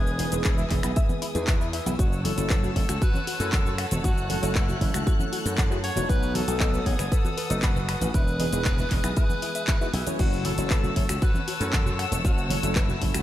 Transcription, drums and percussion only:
0.07 shaker
0.19 open hi-hat, high conga
0.32 closed hi-hat, shaker
0.44 kick, clap, closed hi-hat, shaker
0.58 low conga, shaker
0.70 kick, clap, open hi-hat, high conga
0.83 finger snap, closed hi-hat, shaker
0.96 kick, closed hi-hat, shaker
1.09 high conga, shaker
1.22 open hi-hat
1.35 closed hi-hat, shaker
1.47 kick, clap, closed hi-hat, high conga, shaker
1.61 shaker
1.73 open hi-hat
1.86 closed hi-hat, high conga, shaker
1.99 kick, closed hi-hat, shaker
2.13 shaker
2.25 open hi-hat, high conga
2.38 closed hi-hat, shaker
2.50 kick, clap, closed hi-hat, shaker
2.63 low conga, shaker
2.76 kick, open hi-hat, high conga
2.89 finger snap, closed hi-hat, shaker
3.02 kick, closed hi-hat, shaker
3.14 high conga, shaker
3.27 open hi-hat
3.40 closed hi-hat, shaker
3.52 kick, clap, closed hi-hat, high conga, shaker
3.66 low conga, shaker
3.78 finger snap, open hi-hat
3.91 closed hi-hat, high conga, shaker
4.04 kick, closed hi-hat, shaker
4.18 shaker
4.30 open hi-hat, high conga
4.43 closed hi-hat, shaker
4.55 kick, clap, closed hi-hat, shaker
4.68 low conga, shaker
4.81 kick, open hi-hat, high conga
4.94 finger snap, closed hi-hat, shaker
5.07 kick, closed hi-hat, shaker
5.20 high conga, shaker
5.33 open hi-hat
5.46 closed hi-hat, shaker
5.58 kick, clap, closed hi-hat, high conga, shaker
5.72 shaker
5.84 open hi-hat
5.96 closed hi-hat, high conga, shaker
6.09 kick, closed hi-hat, shaker
6.23 shaker
6.35 open hi-hat, high conga
6.48 closed hi-hat, shaker
6.60 kick, clap, closed hi-hat, shaker
6.73 low conga, shaker
6.86 kick, open hi-hat, high conga
6.99 finger snap, closed hi-hat, shaker
7.12 kick, closed hi-hat, shaker
7.25 high conga, shaker
7.38 open hi-hat
7.50 closed hi-hat, shaker
7.62 kick, clap, closed hi-hat, high conga, shaker
7.75 low conga, shaker
7.89 finger snap, open hi-hat
8.01 closed hi-hat, high conga, shaker
8.14 kick, closed hi-hat, shaker
8.27 shaker
8.40 open hi-hat, high conga
8.53 closed hi-hat, shaker
8.65 kick, clap, closed hi-hat, shaker
8.78 low conga, shaker
8.90 kick, clap, open hi-hat, high conga
9.04 finger snap, closed hi-hat, shaker
9.17 kick, closed hi-hat, shaker
9.30 high conga, shaker
9.42 open hi-hat
9.55 closed hi-hat, shaker
9.67 kick, clap, closed hi-hat, high conga, shaker
9.81 shaker
9.94 open hi-hat
10.07 closed hi-hat, high conga, shaker
10.19 kick, closed hi-hat, crash, shaker
10.33 shaker
10.45 open hi-hat, high conga
10.58 closed hi-hat, shaker
10.70 kick, clap, closed hi-hat, shaker
10.84 low conga, shaker
10.96 kick, open hi-hat, high conga
11.09 finger snap, closed hi-hat, shaker
11.22 kick, closed hi-hat, shaker
11.34 high conga, shaker
11.48 open hi-hat
11.61 closed hi-hat, shaker
11.73 kick, clap, closed hi-hat, high conga, shaker
11.86 low conga, shaker
11.99 finger snap, open hi-hat
12.12 closed hi-hat, high conga, shaker
12.25 kick, closed hi-hat, shaker
12.38 shaker
12.50 open hi-hat, high conga
12.63 closed hi-hat, shaker
12.75 kick, clap, closed hi-hat, shaker
12.88 low conga, shaker
13.02 kick, open hi-hat, high conga
13.14 finger snap, closed hi-hat, shaker

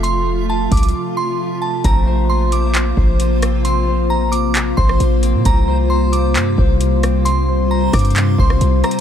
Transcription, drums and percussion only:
0.04 closed hi-hat
0.71 kick, closed hi-hat, open hi-hat
0.77 closed hi-hat
0.83 closed hi-hat
0.89 closed hi-hat
1.84 kick, closed hi-hat
2.52 closed hi-hat
2.75 clap, closed hi-hat
2.97 kick
3.20 closed hi-hat
3.42 cross-stick, closed hi-hat
3.65 closed hi-hat
4.33 closed hi-hat
4.55 clap, closed hi-hat
4.78 kick
4.89 cross-stick
5.00 closed hi-hat
5.23 closed hi-hat
5.45 kick, closed hi-hat
6.13 closed hi-hat
6.36 clap, closed hi-hat
6.58 kick
6.81 closed hi-hat
7.03 cross-stick, closed hi-hat
7.26 closed hi-hat
7.93 kick, cross-stick, closed hi-hat, open hi-hat
7.99 closed hi-hat
8.05 closed hi-hat
8.10 closed hi-hat
8.16 clap, closed hi-hat
8.38 kick
8.50 cross-stick
8.61 closed hi-hat
8.84 cross-stick, closed hi-hat
8.91 closed hi-hat

